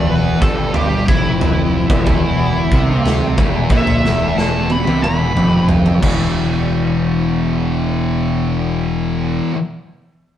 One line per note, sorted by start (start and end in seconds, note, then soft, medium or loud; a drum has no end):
0.00 0.37 E1 medium
0.00 0.39 E2 loud
0.10 0.41 B4 medium
0.41 1.04 G1 medium
0.41 1.06 G2 loud
0.41 0.74 A4 medium
0.41 kick loud
0.74 1.06 G4 medium
0.74 floor tom medium
0.74 mid tom medium
1.08 1.86 F1 medium
1.08 1.89 F2 loud
1.08 3.02 E4 loud
1.08 kick loud
1.41 floor tom medium
1.90 2.67 E1 loud
1.90 2.69 E2 medium
1.90 kick loud
1.90 mid tom medium
2.06 kick loud
2.06 floor tom medium
2.70 3.34 C2 medium
2.70 3.35 C3 loud
2.70 kick loud
3.06 snare medium
3.06 floor tom medium
3.38 3.68 E1 medium
3.38 3.68 E2 loud
3.38 kick loud
3.38 mid tom medium
3.69 4.02 A#1 medium
3.69 4.03 A#2 loud
3.69 4.36 E5 loud
3.69 kick loud
3.69 mid tom medium
3.87 floor tom medium
4.03 4.82 E1 medium
4.03 4.85 E2 loud
4.03 snare medium
4.38 4.69 A5 medium
4.38 snare medium
4.70 5.02 B5 medium
4.70 high tom medium
4.85 5.02 C2 medium
4.85 5.02 C3 loud
4.85 high tom medium
5.03 5.34 E1 medium
5.03 5.33 E2 loud
5.03 5.66 B5 loud
5.03 mid tom medium
5.34 5.98 F1 medium
5.34 6.00 F2 medium
5.34 mid tom medium
5.68 floor tom medium
5.86 floor tom medium
6.01 9.39 E1 medium
6.01 9.51 E2 medium
6.01 9.53 B2 loud
6.01 kick loud
6.01 crash medium
6.05 9.55 E3 loud